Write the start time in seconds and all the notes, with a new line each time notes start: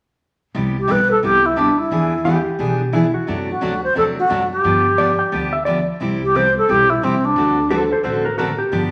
0.54 C2 C3 G3 B3 E4 G4
0.79 G4
0.88 B1 C3 G3 B3 E4 G4 B4
1.10 A4
1.23 C2 C3 G3 B3 E4 G4
1.45 E4
1.56 D2 C3 G3 B3 D4 E4 G4
1.78 E4
1.91 E2 E3 B3 D4 G#4
2.25 E3 B3 D4 G4 G#4
2.59 B1 E3 B3 D4 G#4
2.93 E3 B3 D4 E4 G#4
3.14 F#4
3.27 F#2 C3 F#3 A3 D4 F#4
3.50 F#4
3.61 D2 C3 F#3 A3 D4 F#4
3.83 C5
3.95 E2 C3 F#3 A3 D4 F#4 A4
4.18 F#4
4.29 F#2 C3 F#3 A3 D4 F#4
4.51 G4
4.64 G2 D3 F3 B3 D4 G4
4.97 D3 F3 B3 D4 G4 D5
5.19 G5
5.32 D2 D3 F3 B3 D4 G4
5.53 E5
5.65 D3 F3 B3 D4 G4 D5
6.00 C2 C3 G3 C4 E4 G4
6.23 G4
6.34 C3 G3 C4 E4 G4 C5
6.58 A4
6.68 B1 C3 G3 C4 E4 G4
6.89 E4
7.02 C2 C3 G3 C4 E4 G4
7.25 D4
7.36 D2 D3 A3 C4 F#4 A4
7.70 D3 A3 C4 F#4 A4 C5
7.92 A4 C5
8.03 A1 D3 A3 C4 F#4 A4 C5
8.25 F#4 A#4
8.38 D3 A3 C4 F#4 A4 A#4
8.58 G4
8.72 G1 D3 F3 B3 D4 G4